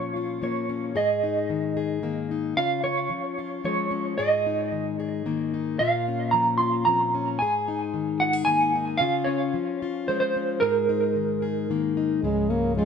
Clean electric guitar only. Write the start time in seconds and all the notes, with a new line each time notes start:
Already playing: C#5
0.43 C#5
0.97 D#5
2.57 F5
2.84 C#5
3.65 C#5
4.18 D#5
5.06 C#5
5.79 F5
6.31 A#5
6.58 C6
6.85 A#5
7.39 G#5
8.20 F#5
8.45 G#5
8.97 F5
9.24 C#5
10.08 C5
10.20 C5
10.60 A#4